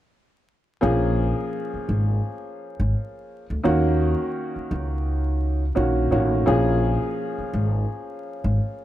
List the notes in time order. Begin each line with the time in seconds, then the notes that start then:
0.81 A#1 F3 A#3 C#4 G#4
1.74 muted upright bass stroke
1.89 G#1
2.80 G#1
3.50 D2
3.63 D#2 D#3 A#3 C#4 F#4
4.56 muted upright bass stroke
4.71 C#2
5.75 A#1 D#3 A#3 C#4 F#4
6.11 A1 D#3 A#3 C#4 F#4
6.46 A#1 F3 A#3 C#4 G#4
7.38 muted upright bass stroke
7.53 G#1
8.44 G#1